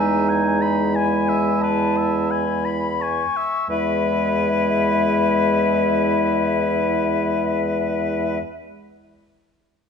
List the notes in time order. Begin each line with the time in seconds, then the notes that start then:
Already playing: E2 G#3 D#4 E5 G#5
0.29 G#5
0.62 B5
0.94 E4 G#5
1.29 E5
1.61 B4 A5
1.97 E5
2.30 G#5 B5
2.65 B5
3.00 G#5 C#6
3.37 E5
3.69 E2 G#3 E4 B4 E5